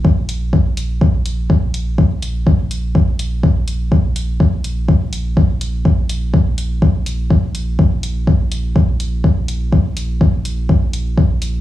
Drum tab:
HH |-x-x-x-x|-x-x-x-x|-x-x-x-x|-x-x-x-x|
BD |o-o-o-o-|o-o-o-o-|o-o-o-o-|o-o-o-o-|

HH |-x-x-x-x|-x-x-x-x|
BD |o-o-o-o-|o-o-o-o-|